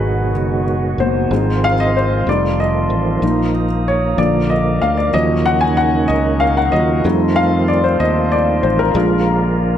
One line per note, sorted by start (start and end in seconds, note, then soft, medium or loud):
0.00 0.35 G#1 medium
0.00 1.29 B2 medium
0.00 2.23 D#3 medium
0.00 1.29 F#3 medium
0.00 1.29 G#3 medium
0.00 0.32 B3 soft
0.00 0.32 F#4 medium
0.00 1.29 F#4 medium
0.00 0.64 G#4 medium
0.00 0.31 A#4 soft
0.00 1.33 B4 medium
0.00 2.24 D#5 medium
0.00 1.29 F#5 medium
0.00 2.24 G#5 medium
0.35 0.95 F#1 medium
0.98 1.28 F#1 medium
0.98 1.29 B2 soft
0.98 1.28 A#3 soft
0.98 1.29 F#4 soft
0.98 1.65 C5 medium
1.31 2.23 G#1 medium
1.31 2.26 F3 medium
1.31 2.26 G#3 medium
1.31 1.74 G#3 soft
1.31 3.21 C4 medium
1.31 1.74 C4 soft
1.31 1.75 D#4 medium
1.31 2.25 F4 medium
1.31 5.10 F5 medium
1.31 3.21 C6 medium
1.64 1.78 F5 medium
1.80 1.94 D#5 medium
1.97 2.29 C5 medium
2.26 2.87 F1 medium
2.26 3.21 D#3 medium
2.26 5.11 F3 medium
2.26 3.19 G3 medium
2.26 3.22 A3 medium
2.26 3.19 A3 soft
2.26 4.16 D#4 medium
2.26 3.19 D#4 medium
2.26 3.21 F4 medium
2.26 2.61 D5 medium
2.26 3.21 A5 medium
2.60 3.51 D#5 medium
2.90 3.20 A1 medium
3.22 4.14 A#1 medium
3.22 3.65 F3 soft
3.22 3.65 A#3 soft
3.22 7.01 A#3 medium
3.22 4.17 D#4 medium
3.22 3.65 D#4 medium
3.22 7.01 A#5 medium
3.22 4.17 D#6 medium
3.88 4.17 C#5 medium
4.17 4.78 A#1 medium
4.17 5.10 D3 medium
4.17 5.13 D3 medium
4.17 5.09 F3 soft
4.17 5.09 A#3 soft
4.17 5.13 A#4 medium
4.17 4.51 D5 medium
4.17 5.13 D6 medium
4.50 4.79 D#5 medium
4.82 5.11 D2 medium
4.82 4.96 F5 medium
4.97 5.14 D5 medium
5.13 6.05 D#2 medium
5.13 7.03 C#3 medium
5.13 8.92 D#3 medium
5.13 6.05 F3 medium
5.13 6.05 F#3 soft
5.13 6.05 C#4 soft
5.13 7.03 C#4 medium
5.13 8.91 D#4 medium
5.13 7.03 D#4 medium
5.13 5.43 D#5 medium
5.13 7.03 D#5 medium
5.13 7.02 C#6 medium
5.46 5.62 F#5 medium
5.61 5.76 G#5 medium
5.77 6.10 F#5 medium
6.08 6.69 C#2 medium
6.08 6.41 D#5 medium
6.40 6.57 F5 medium
6.57 6.72 F#5 medium
6.72 7.02 D#2 medium
6.72 7.01 F#3 soft
6.72 7.01 C#4 soft
6.72 7.01 F4 soft
6.72 7.38 D#5 medium
7.04 7.96 F2 medium
7.04 9.78 F3 medium
7.04 8.91 G3 medium
7.04 8.93 A3 medium
7.04 8.91 A3 soft
7.04 8.93 C4 medium
7.04 8.92 D#4 medium
7.04 9.78 F4 medium
7.04 9.78 F5 medium
7.04 8.93 A5 medium
7.04 8.93 C6 medium
7.36 7.69 F5 medium
7.68 7.83 D5 medium
7.84 8.00 C5 medium
8.00 8.60 D#2 medium
8.00 8.33 D#5 medium
8.32 8.64 D5 medium
8.63 8.93 A1 medium
8.63 8.80 C5 medium
8.79 9.78 A#4 medium
8.94 9.78 A#1 loud
8.94 9.78 D3 medium
8.94 9.78 G#3 medium
8.94 9.78 A#3 medium
8.94 9.78 D4 soft
8.94 9.78 F4 medium
8.94 9.78 D5 medium
8.94 9.78 G#5 medium
8.94 9.78 A#5 medium